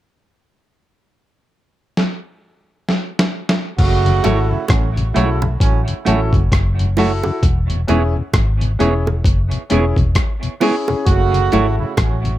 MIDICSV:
0, 0, Header, 1, 8, 480
1, 0, Start_track
1, 0, Key_signature, 3, "minor"
1, 0, Tempo, 909642
1, 75, Time_signature, 4, 2, 24, 8
1, 6536, End_track
2, 0, Start_track
2, 0, Title_t, "Grand piano"
2, 0, Program_c, 0, 0
2, 2234, Note_on_c, 0, 64, 86
2, 2237, Note_on_c, 0, 66, 84
2, 2240, Note_on_c, 0, 69, 101
2, 2359, Note_off_c, 0, 64, 0
2, 2360, Note_off_c, 0, 66, 0
2, 2362, Note_off_c, 0, 69, 0
2, 2714, Note_on_c, 0, 64, 91
2, 2716, Note_on_c, 0, 66, 75
2, 2720, Note_on_c, 0, 69, 91
2, 2839, Note_off_c, 0, 64, 0
2, 2840, Note_off_c, 0, 66, 0
2, 2842, Note_off_c, 0, 69, 0
2, 2861, Note_on_c, 0, 66, 22
2, 2862, Note_on_c, 0, 69, 25
2, 2899, Note_off_c, 0, 66, 0
2, 2899, Note_off_c, 0, 69, 0
2, 3197, Note_on_c, 0, 64, 81
2, 3200, Note_on_c, 0, 66, 73
2, 3206, Note_on_c, 0, 69, 101
2, 3320, Note_off_c, 0, 64, 0
2, 3322, Note_off_c, 0, 66, 0
2, 3325, Note_off_c, 0, 69, 0
2, 3677, Note_on_c, 0, 64, 88
2, 3681, Note_on_c, 0, 66, 83
2, 3684, Note_on_c, 0, 69, 106
2, 3800, Note_off_c, 0, 64, 0
2, 3803, Note_off_c, 0, 66, 0
2, 3804, Note_off_c, 0, 69, 0
2, 3815, Note_on_c, 0, 64, 72
2, 3819, Note_on_c, 0, 66, 65
2, 3823, Note_on_c, 0, 69, 82
2, 3903, Note_off_c, 0, 64, 0
2, 3905, Note_off_c, 0, 66, 0
2, 3907, Note_off_c, 0, 69, 0
2, 4155, Note_on_c, 0, 61, 85
2, 4159, Note_on_c, 0, 64, 84
2, 4162, Note_on_c, 0, 68, 96
2, 4280, Note_off_c, 0, 61, 0
2, 4281, Note_off_c, 0, 64, 0
2, 4283, Note_off_c, 0, 68, 0
2, 4638, Note_on_c, 0, 61, 85
2, 4640, Note_on_c, 0, 64, 79
2, 4641, Note_on_c, 0, 68, 91
2, 4761, Note_off_c, 0, 61, 0
2, 4762, Note_off_c, 0, 64, 0
2, 4763, Note_off_c, 0, 68, 0
2, 4784, Note_on_c, 0, 64, 24
2, 4785, Note_on_c, 0, 68, 25
2, 4820, Note_off_c, 0, 64, 0
2, 4821, Note_off_c, 0, 68, 0
2, 5117, Note_on_c, 0, 61, 86
2, 5122, Note_on_c, 0, 64, 79
2, 5124, Note_on_c, 0, 68, 90
2, 5241, Note_off_c, 0, 61, 0
2, 5243, Note_off_c, 0, 64, 0
2, 5244, Note_off_c, 0, 68, 0
2, 5602, Note_on_c, 0, 61, 92
2, 5605, Note_on_c, 0, 64, 84
2, 5609, Note_on_c, 0, 68, 103
2, 5723, Note_off_c, 0, 61, 0
2, 5724, Note_off_c, 0, 64, 0
2, 5726, Note_off_c, 0, 68, 0
2, 5745, Note_on_c, 0, 61, 79
2, 5747, Note_on_c, 0, 64, 58
2, 5749, Note_on_c, 0, 68, 81
2, 5828, Note_off_c, 0, 61, 0
2, 5829, Note_off_c, 0, 64, 0
2, 5830, Note_off_c, 0, 68, 0
2, 6081, Note_on_c, 0, 64, 91
2, 6083, Note_on_c, 0, 66, 84
2, 6088, Note_on_c, 0, 69, 87
2, 6203, Note_off_c, 0, 64, 0
2, 6204, Note_off_c, 0, 66, 0
2, 6206, Note_off_c, 0, 69, 0
2, 6536, End_track
3, 0, Start_track
3, 0, Title_t, "Clean electric guitar"
3, 0, Program_c, 1, 27
3, 2235, Note_on_c, 1, 57, 73
3, 2238, Note_on_c, 1, 64, 78
3, 2240, Note_on_c, 1, 66, 84
3, 2245, Note_on_c, 1, 73, 87
3, 2308, Note_off_c, 1, 57, 0
3, 2309, Note_off_c, 1, 64, 0
3, 2311, Note_off_c, 1, 66, 0
3, 2313, Note_off_c, 1, 73, 0
3, 2714, Note_on_c, 1, 57, 79
3, 2717, Note_on_c, 1, 64, 79
3, 2723, Note_on_c, 1, 66, 88
3, 2726, Note_on_c, 1, 73, 91
3, 2787, Note_off_c, 1, 57, 0
3, 2789, Note_off_c, 1, 64, 0
3, 2792, Note_off_c, 1, 66, 0
3, 2793, Note_off_c, 1, 73, 0
3, 3193, Note_on_c, 1, 57, 87
3, 3196, Note_on_c, 1, 64, 77
3, 3199, Note_on_c, 1, 66, 91
3, 3204, Note_on_c, 1, 73, 88
3, 3267, Note_off_c, 1, 57, 0
3, 3269, Note_off_c, 1, 64, 0
3, 3270, Note_off_c, 1, 66, 0
3, 3273, Note_off_c, 1, 73, 0
3, 3680, Note_on_c, 1, 57, 94
3, 3682, Note_on_c, 1, 64, 82
3, 3687, Note_on_c, 1, 66, 99
3, 3687, Note_on_c, 1, 73, 87
3, 3751, Note_off_c, 1, 57, 0
3, 3752, Note_off_c, 1, 64, 0
3, 3754, Note_off_c, 1, 66, 0
3, 3754, Note_off_c, 1, 73, 0
3, 4159, Note_on_c, 1, 59, 90
3, 4163, Note_on_c, 1, 64, 85
3, 4164, Note_on_c, 1, 68, 81
3, 4170, Note_on_c, 1, 73, 88
3, 4230, Note_off_c, 1, 59, 0
3, 4232, Note_off_c, 1, 64, 0
3, 4232, Note_off_c, 1, 68, 0
3, 4236, Note_off_c, 1, 73, 0
3, 4639, Note_on_c, 1, 59, 89
3, 4645, Note_on_c, 1, 64, 90
3, 4646, Note_on_c, 1, 68, 95
3, 4649, Note_on_c, 1, 73, 87
3, 4710, Note_off_c, 1, 59, 0
3, 4713, Note_off_c, 1, 64, 0
3, 4714, Note_off_c, 1, 68, 0
3, 4715, Note_off_c, 1, 73, 0
3, 5122, Note_on_c, 1, 59, 78
3, 5126, Note_on_c, 1, 64, 78
3, 5128, Note_on_c, 1, 68, 89
3, 5131, Note_on_c, 1, 73, 85
3, 5192, Note_off_c, 1, 59, 0
3, 5194, Note_off_c, 1, 64, 0
3, 5195, Note_off_c, 1, 68, 0
3, 5196, Note_off_c, 1, 73, 0
3, 5596, Note_on_c, 1, 59, 89
3, 5599, Note_on_c, 1, 64, 86
3, 5603, Note_on_c, 1, 68, 96
3, 5606, Note_on_c, 1, 73, 90
3, 5669, Note_off_c, 1, 59, 0
3, 5670, Note_off_c, 1, 64, 0
3, 5672, Note_off_c, 1, 68, 0
3, 5674, Note_off_c, 1, 73, 0
3, 6080, Note_on_c, 1, 57, 83
3, 6081, Note_on_c, 1, 64, 91
3, 6086, Note_on_c, 1, 66, 95
3, 6088, Note_on_c, 1, 73, 91
3, 6150, Note_off_c, 1, 57, 0
3, 6151, Note_off_c, 1, 64, 0
3, 6154, Note_off_c, 1, 66, 0
3, 6155, Note_off_c, 1, 73, 0
3, 6536, End_track
4, 0, Start_track
4, 0, Title_t, "Trombone section"
4, 0, Program_c, 2, 61
4, 1995, Note_on_c, 2, 57, 104
4, 1996, Note_on_c, 2, 49, 98
4, 1996, Note_on_c, 2, 66, 114
4, 2355, Note_off_c, 2, 57, 0
4, 2356, Note_off_c, 2, 49, 0
4, 2356, Note_off_c, 2, 66, 0
4, 2371, Note_on_c, 2, 49, 70
4, 2371, Note_on_c, 2, 57, 75
4, 2375, Note_on_c, 2, 64, 86
4, 2453, Note_off_c, 2, 49, 0
4, 2453, Note_off_c, 2, 57, 0
4, 2455, Note_off_c, 2, 64, 0
4, 2472, Note_on_c, 2, 45, 79
4, 2472, Note_on_c, 2, 54, 79
4, 2472, Note_on_c, 2, 61, 79
4, 2586, Note_off_c, 2, 45, 0
4, 2586, Note_off_c, 2, 54, 0
4, 2586, Note_off_c, 2, 61, 0
4, 2713, Note_on_c, 2, 49, 80
4, 2713, Note_on_c, 2, 64, 90
4, 2714, Note_on_c, 2, 57, 78
4, 2906, Note_off_c, 2, 64, 0
4, 2907, Note_off_c, 2, 49, 0
4, 2907, Note_off_c, 2, 57, 0
4, 2955, Note_on_c, 2, 61, 100
4, 2956, Note_on_c, 2, 45, 104
4, 2956, Note_on_c, 2, 54, 95
4, 3068, Note_off_c, 2, 61, 0
4, 3069, Note_off_c, 2, 45, 0
4, 3069, Note_off_c, 2, 54, 0
4, 3196, Note_on_c, 2, 54, 70
4, 3196, Note_on_c, 2, 61, 74
4, 3197, Note_on_c, 2, 45, 78
4, 3388, Note_off_c, 2, 54, 0
4, 3388, Note_off_c, 2, 61, 0
4, 3389, Note_off_c, 2, 45, 0
4, 5836, Note_on_c, 2, 57, 104
4, 5837, Note_on_c, 2, 66, 127
4, 5838, Note_on_c, 2, 49, 103
4, 6196, Note_off_c, 2, 57, 0
4, 6197, Note_off_c, 2, 49, 0
4, 6197, Note_off_c, 2, 66, 0
4, 6220, Note_on_c, 2, 49, 85
4, 6221, Note_on_c, 2, 64, 89
4, 6222, Note_on_c, 2, 57, 75
4, 6298, Note_off_c, 2, 49, 0
4, 6299, Note_off_c, 2, 64, 0
4, 6300, Note_off_c, 2, 57, 0
4, 6317, Note_on_c, 2, 54, 69
4, 6319, Note_on_c, 2, 45, 77
4, 6322, Note_on_c, 2, 61, 84
4, 6429, Note_off_c, 2, 54, 0
4, 6431, Note_off_c, 2, 45, 0
4, 6432, Note_off_c, 2, 61, 0
4, 6536, End_track
5, 0, Start_track
5, 0, Title_t, "Tonewheel organ"
5, 0, Program_c, 3, 16
5, 2138, Note_on_c, 3, 49, 60
5, 2139, Note_on_c, 3, 42, 63
5, 2174, Note_off_c, 3, 42, 0
5, 2174, Note_off_c, 3, 49, 0
5, 2238, Note_on_c, 3, 54, 79
5, 2243, Note_on_c, 3, 57, 70
5, 2243, Note_on_c, 3, 64, 90
5, 2288, Note_off_c, 3, 54, 0
5, 2291, Note_off_c, 3, 57, 0
5, 2291, Note_off_c, 3, 64, 0
5, 2381, Note_on_c, 3, 49, 53
5, 2382, Note_on_c, 3, 42, 53
5, 2415, Note_off_c, 3, 49, 0
5, 2416, Note_off_c, 3, 42, 0
5, 2620, Note_on_c, 3, 49, 56
5, 2622, Note_on_c, 3, 42, 57
5, 2654, Note_off_c, 3, 49, 0
5, 2655, Note_off_c, 3, 42, 0
5, 2721, Note_on_c, 3, 57, 63
5, 2722, Note_on_c, 3, 54, 73
5, 2722, Note_on_c, 3, 64, 79
5, 2770, Note_off_c, 3, 54, 0
5, 2770, Note_off_c, 3, 57, 0
5, 2771, Note_off_c, 3, 64, 0
5, 2863, Note_on_c, 3, 42, 53
5, 2863, Note_on_c, 3, 49, 59
5, 2896, Note_off_c, 3, 42, 0
5, 2896, Note_off_c, 3, 49, 0
5, 3107, Note_on_c, 3, 49, 56
5, 3108, Note_on_c, 3, 42, 50
5, 3138, Note_off_c, 3, 49, 0
5, 3139, Note_off_c, 3, 42, 0
5, 3206, Note_on_c, 3, 54, 75
5, 3207, Note_on_c, 3, 57, 64
5, 3208, Note_on_c, 3, 64, 79
5, 3252, Note_off_c, 3, 54, 0
5, 3253, Note_off_c, 3, 57, 0
5, 3253, Note_off_c, 3, 64, 0
5, 3347, Note_on_c, 3, 49, 61
5, 3349, Note_on_c, 3, 42, 64
5, 3378, Note_off_c, 3, 49, 0
5, 3379, Note_off_c, 3, 42, 0
5, 3589, Note_on_c, 3, 42, 54
5, 3589, Note_on_c, 3, 49, 58
5, 3619, Note_off_c, 3, 42, 0
5, 3619, Note_off_c, 3, 49, 0
5, 3686, Note_on_c, 3, 54, 81
5, 3689, Note_on_c, 3, 57, 63
5, 3692, Note_on_c, 3, 64, 87
5, 3733, Note_off_c, 3, 54, 0
5, 3734, Note_off_c, 3, 57, 0
5, 3736, Note_off_c, 3, 64, 0
5, 3829, Note_on_c, 3, 42, 58
5, 3830, Note_on_c, 3, 49, 63
5, 3859, Note_off_c, 3, 42, 0
5, 3860, Note_off_c, 3, 49, 0
5, 4067, Note_on_c, 3, 40, 61
5, 4068, Note_on_c, 3, 47, 65
5, 4098, Note_off_c, 3, 40, 0
5, 4099, Note_off_c, 3, 47, 0
5, 4166, Note_on_c, 3, 56, 78
5, 4170, Note_on_c, 3, 61, 73
5, 4170, Note_on_c, 3, 64, 86
5, 4213, Note_off_c, 3, 56, 0
5, 4214, Note_off_c, 3, 61, 0
5, 4214, Note_off_c, 3, 64, 0
5, 4308, Note_on_c, 3, 47, 51
5, 4311, Note_on_c, 3, 40, 60
5, 4339, Note_off_c, 3, 47, 0
5, 4340, Note_off_c, 3, 40, 0
5, 4545, Note_on_c, 3, 40, 57
5, 4546, Note_on_c, 3, 47, 54
5, 4577, Note_off_c, 3, 40, 0
5, 4578, Note_off_c, 3, 47, 0
5, 4641, Note_on_c, 3, 56, 74
5, 4642, Note_on_c, 3, 61, 71
5, 4645, Note_on_c, 3, 64, 83
5, 4690, Note_off_c, 3, 56, 0
5, 4690, Note_off_c, 3, 61, 0
5, 4692, Note_off_c, 3, 64, 0
5, 4783, Note_on_c, 3, 47, 61
5, 4784, Note_on_c, 3, 40, 57
5, 4816, Note_off_c, 3, 47, 0
5, 4817, Note_off_c, 3, 40, 0
5, 5024, Note_on_c, 3, 40, 56
5, 5024, Note_on_c, 3, 47, 51
5, 5057, Note_off_c, 3, 40, 0
5, 5057, Note_off_c, 3, 47, 0
5, 5117, Note_on_c, 3, 56, 70
5, 5118, Note_on_c, 3, 64, 77
5, 5120, Note_on_c, 3, 61, 66
5, 5168, Note_off_c, 3, 56, 0
5, 5169, Note_off_c, 3, 61, 0
5, 5169, Note_off_c, 3, 64, 0
5, 5261, Note_on_c, 3, 40, 57
5, 5261, Note_on_c, 3, 47, 57
5, 5295, Note_off_c, 3, 40, 0
5, 5295, Note_off_c, 3, 47, 0
5, 5502, Note_on_c, 3, 47, 56
5, 5504, Note_on_c, 3, 40, 58
5, 5536, Note_off_c, 3, 47, 0
5, 5537, Note_off_c, 3, 40, 0
5, 5603, Note_on_c, 3, 61, 67
5, 5605, Note_on_c, 3, 56, 67
5, 5606, Note_on_c, 3, 64, 85
5, 5651, Note_off_c, 3, 61, 0
5, 5652, Note_off_c, 3, 56, 0
5, 5653, Note_off_c, 3, 64, 0
5, 5748, Note_on_c, 3, 40, 60
5, 5748, Note_on_c, 3, 47, 59
5, 5779, Note_off_c, 3, 40, 0
5, 5779, Note_off_c, 3, 47, 0
5, 5983, Note_on_c, 3, 42, 62
5, 5983, Note_on_c, 3, 49, 61
5, 6016, Note_off_c, 3, 42, 0
5, 6017, Note_off_c, 3, 49, 0
5, 6080, Note_on_c, 3, 54, 78
5, 6081, Note_on_c, 3, 64, 87
5, 6082, Note_on_c, 3, 57, 75
5, 6129, Note_off_c, 3, 54, 0
5, 6130, Note_off_c, 3, 64, 0
5, 6131, Note_off_c, 3, 57, 0
5, 6220, Note_on_c, 3, 42, 57
5, 6223, Note_on_c, 3, 49, 54
5, 6255, Note_off_c, 3, 42, 0
5, 6257, Note_off_c, 3, 49, 0
5, 6461, Note_on_c, 3, 49, 53
5, 6464, Note_on_c, 3, 42, 58
5, 6495, Note_off_c, 3, 49, 0
5, 6497, Note_off_c, 3, 42, 0
5, 6536, End_track
6, 0, Start_track
6, 0, Title_t, "Fingered electric bass"
6, 0, Program_c, 4, 33
6, 2002, Note_on_c, 4, 30, 96
6, 2226, Note_off_c, 4, 30, 0
6, 2246, Note_on_c, 4, 32, 83
6, 2375, Note_off_c, 4, 32, 0
6, 2482, Note_on_c, 4, 33, 74
6, 2707, Note_off_c, 4, 33, 0
6, 2725, Note_on_c, 4, 35, 76
6, 2948, Note_off_c, 4, 35, 0
6, 2961, Note_on_c, 4, 33, 80
6, 3093, Note_off_c, 4, 33, 0
6, 3204, Note_on_c, 4, 33, 79
6, 3334, Note_off_c, 4, 33, 0
6, 3342, Note_on_c, 4, 30, 89
6, 3434, Note_off_c, 4, 30, 0
6, 3444, Note_on_c, 4, 30, 102
6, 3801, Note_off_c, 4, 30, 0
6, 3923, Note_on_c, 4, 28, 91
6, 4147, Note_off_c, 4, 28, 0
6, 4166, Note_on_c, 4, 28, 84
6, 4295, Note_off_c, 4, 28, 0
6, 4402, Note_on_c, 4, 32, 88
6, 4627, Note_off_c, 4, 32, 0
6, 4648, Note_on_c, 4, 28, 82
6, 4870, Note_off_c, 4, 28, 0
6, 4883, Note_on_c, 4, 30, 93
6, 5014, Note_off_c, 4, 30, 0
6, 5128, Note_on_c, 4, 28, 88
6, 5256, Note_off_c, 4, 28, 0
6, 5262, Note_on_c, 4, 28, 86
6, 5353, Note_off_c, 4, 28, 0
6, 5844, Note_on_c, 4, 30, 99
6, 6068, Note_off_c, 4, 30, 0
6, 6087, Note_on_c, 4, 32, 91
6, 6216, Note_off_c, 4, 32, 0
6, 6324, Note_on_c, 4, 33, 85
6, 6536, Note_off_c, 4, 33, 0
6, 6536, End_track
7, 0, Start_track
7, 0, Title_t, "Muted clean electric guitar strokes"
7, 5742, Note_on_c, 9, 29, 43
7, 5795, Note_off_c, 9, 29, 0
7, 6536, End_track
8, 0, Start_track
8, 0, Title_t, "Drums"
8, 1041, Note_on_c, 9, 38, 56
8, 1094, Note_off_c, 9, 38, 0
8, 1523, Note_on_c, 9, 38, 73
8, 1575, Note_off_c, 9, 38, 0
8, 1684, Note_on_c, 9, 38, 93
8, 1737, Note_off_c, 9, 38, 0
8, 1842, Note_on_c, 9, 38, 92
8, 1895, Note_off_c, 9, 38, 0
8, 1997, Note_on_c, 9, 36, 88
8, 1997, Note_on_c, 9, 49, 89
8, 2050, Note_off_c, 9, 36, 0
8, 2050, Note_off_c, 9, 49, 0
8, 2142, Note_on_c, 9, 42, 48
8, 2195, Note_off_c, 9, 42, 0
8, 2236, Note_on_c, 9, 42, 72
8, 2239, Note_on_c, 9, 60, 47
8, 2289, Note_off_c, 9, 42, 0
8, 2292, Note_off_c, 9, 60, 0
8, 2472, Note_on_c, 9, 60, 73
8, 2478, Note_on_c, 9, 36, 111
8, 2479, Note_on_c, 9, 42, 92
8, 2480, Note_on_c, 9, 37, 119
8, 2524, Note_off_c, 9, 60, 0
8, 2530, Note_off_c, 9, 36, 0
8, 2532, Note_off_c, 9, 42, 0
8, 2533, Note_off_c, 9, 37, 0
8, 2624, Note_on_c, 9, 42, 52
8, 2677, Note_off_c, 9, 42, 0
8, 2722, Note_on_c, 9, 42, 67
8, 2774, Note_off_c, 9, 42, 0
8, 2860, Note_on_c, 9, 60, 71
8, 2913, Note_off_c, 9, 60, 0
8, 2957, Note_on_c, 9, 36, 104
8, 2961, Note_on_c, 9, 42, 97
8, 3010, Note_off_c, 9, 36, 0
8, 3014, Note_off_c, 9, 42, 0
8, 3101, Note_on_c, 9, 42, 48
8, 3154, Note_off_c, 9, 42, 0
8, 3200, Note_on_c, 9, 42, 79
8, 3253, Note_off_c, 9, 42, 0
8, 3339, Note_on_c, 9, 36, 86
8, 3345, Note_on_c, 9, 42, 35
8, 3392, Note_off_c, 9, 36, 0
8, 3398, Note_off_c, 9, 42, 0
8, 3439, Note_on_c, 9, 36, 100
8, 3441, Note_on_c, 9, 42, 87
8, 3446, Note_on_c, 9, 37, 100
8, 3492, Note_off_c, 9, 36, 0
8, 3494, Note_off_c, 9, 42, 0
8, 3499, Note_off_c, 9, 37, 0
8, 3584, Note_on_c, 9, 42, 43
8, 3637, Note_off_c, 9, 42, 0
8, 3677, Note_on_c, 9, 61, 66
8, 3684, Note_on_c, 9, 46, 72
8, 3730, Note_off_c, 9, 61, 0
8, 3736, Note_off_c, 9, 46, 0
8, 3818, Note_on_c, 9, 60, 67
8, 3871, Note_off_c, 9, 60, 0
8, 3919, Note_on_c, 9, 36, 96
8, 3921, Note_on_c, 9, 42, 95
8, 3972, Note_off_c, 9, 36, 0
8, 3973, Note_off_c, 9, 42, 0
8, 4062, Note_on_c, 9, 42, 46
8, 4115, Note_off_c, 9, 42, 0
8, 4159, Note_on_c, 9, 42, 70
8, 4162, Note_on_c, 9, 60, 51
8, 4212, Note_off_c, 9, 42, 0
8, 4215, Note_off_c, 9, 60, 0
8, 4398, Note_on_c, 9, 60, 73
8, 4399, Note_on_c, 9, 36, 105
8, 4399, Note_on_c, 9, 42, 106
8, 4400, Note_on_c, 9, 37, 115
8, 4451, Note_off_c, 9, 60, 0
8, 4452, Note_off_c, 9, 36, 0
8, 4452, Note_off_c, 9, 42, 0
8, 4453, Note_off_c, 9, 37, 0
8, 4545, Note_on_c, 9, 42, 45
8, 4598, Note_off_c, 9, 42, 0
8, 4644, Note_on_c, 9, 42, 65
8, 4697, Note_off_c, 9, 42, 0
8, 4787, Note_on_c, 9, 60, 69
8, 4840, Note_off_c, 9, 60, 0
8, 4878, Note_on_c, 9, 36, 107
8, 4884, Note_on_c, 9, 42, 95
8, 4931, Note_off_c, 9, 36, 0
8, 4937, Note_off_c, 9, 42, 0
8, 5020, Note_on_c, 9, 42, 47
8, 5073, Note_off_c, 9, 42, 0
8, 5119, Note_on_c, 9, 42, 74
8, 5171, Note_off_c, 9, 42, 0
8, 5258, Note_on_c, 9, 36, 81
8, 5264, Note_on_c, 9, 42, 36
8, 5311, Note_off_c, 9, 36, 0
8, 5317, Note_off_c, 9, 42, 0
8, 5357, Note_on_c, 9, 42, 96
8, 5358, Note_on_c, 9, 36, 100
8, 5361, Note_on_c, 9, 37, 96
8, 5410, Note_off_c, 9, 42, 0
8, 5411, Note_off_c, 9, 36, 0
8, 5414, Note_off_c, 9, 37, 0
8, 5503, Note_on_c, 9, 42, 44
8, 5555, Note_off_c, 9, 42, 0
8, 5599, Note_on_c, 9, 46, 81
8, 5599, Note_on_c, 9, 61, 71
8, 5652, Note_off_c, 9, 46, 0
8, 5652, Note_off_c, 9, 61, 0
8, 5741, Note_on_c, 9, 60, 71
8, 5793, Note_off_c, 9, 60, 0
8, 5839, Note_on_c, 9, 42, 87
8, 5840, Note_on_c, 9, 36, 94
8, 5892, Note_off_c, 9, 36, 0
8, 5892, Note_off_c, 9, 42, 0
8, 5985, Note_on_c, 9, 42, 52
8, 6038, Note_off_c, 9, 42, 0
8, 6079, Note_on_c, 9, 42, 72
8, 6086, Note_on_c, 9, 60, 48
8, 6131, Note_off_c, 9, 42, 0
8, 6138, Note_off_c, 9, 60, 0
8, 6317, Note_on_c, 9, 60, 76
8, 6320, Note_on_c, 9, 36, 108
8, 6320, Note_on_c, 9, 42, 108
8, 6321, Note_on_c, 9, 37, 127
8, 6370, Note_off_c, 9, 60, 0
8, 6373, Note_off_c, 9, 36, 0
8, 6373, Note_off_c, 9, 42, 0
8, 6374, Note_off_c, 9, 37, 0
8, 6464, Note_on_c, 9, 42, 51
8, 6517, Note_off_c, 9, 42, 0
8, 6536, End_track
0, 0, End_of_file